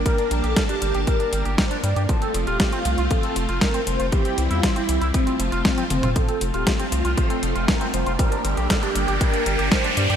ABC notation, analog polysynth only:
X:1
M:4/4
L:1/16
Q:1/4=118
K:Fmix
V:1 name="Analog polysynth"
B2 z A z G2 z B3 z c z d z | A2 z G z F2 z A3 z B z c z | G2 z F z =E2 z C3 z C z C z | A2 z G z F2 z A3 z B z c z |
B2 z A z G2 z B3 z c z d z |]